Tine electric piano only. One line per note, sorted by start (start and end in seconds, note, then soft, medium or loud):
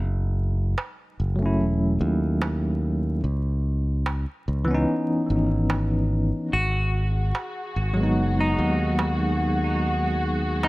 1.36 3.19 F#3 medium
1.36 3.21 A3 medium
1.42 3.23 C#4 medium
1.42 3.24 E4 medium
4.65 6.48 E3 medium
4.65 6.50 B3 medium
4.71 6.51 C#4 medium
4.71 6.53 D#4 loud
7.94 10.68 F#3 medium
7.94 10.68 G#3 medium
8.01 10.68 B3 medium
8.01 10.68 D#4 medium